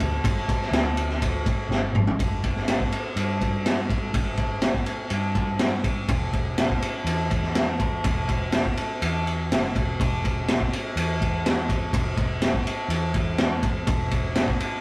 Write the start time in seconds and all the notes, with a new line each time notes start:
0.00 D2, kick, ride
0.24 G1, kick, ride
0.48 kick, ride
0.62 snare
0.71 D2, snare, ride
0.97 ride
1.09 snare
1.22 kick, ride
1.46 kick, ride
1.69 G1, snare
1.93 G1, mid tom
2.07 floor tom
2.19 G1, kick, ride
2.44 kick, ride
2.56 snare
2.68 snare, ride
2.80 kick
2.92 ride
3.16 G2, ride
3.41 kick, ride
3.66 snare, ride
3.90 kick, ride
4.13 G1, kick, ride
4.37 kick, ride
4.62 snare, ride
4.74 kick
4.86 ride
5.10 G2, ride
5.35 kick, ride
5.59 snare, ride
5.84 kick, ride
6.08 E1, kick, ride
6.33 kick, ride
6.58 snare, ride
6.70 kick
6.82 ride
7.04 E2, ride
7.31 kick, ride
7.43 snare
7.55 snare, ride
7.80 kick, ride
8.04 E1, kick, ride
8.29 kick, ride
8.52 snare, ride
8.65 kick
8.77 ride
9.02 E2, ride
9.27 ride
9.52 F#1, snare, ride
9.75 E1, kick, ride
9.99 E1, kick, ride
10.24 kick, ride
10.48 snare, ride
10.60 kick
10.73 ride
10.96 E2, ride
11.21 kick, ride
11.46 snare, ride
11.69 kick, ride
11.93 E1, kick, ride
12.17 kick, ride
12.42 snare, ride
12.54 kick
12.67 ride
12.88 E2, ride
13.14 kick, ride
13.38 snare, ride
13.63 kick, ride
13.86 E1, kick, ride
14.11 kick, ride
14.35 snare, ride
14.48 kick
14.60 ride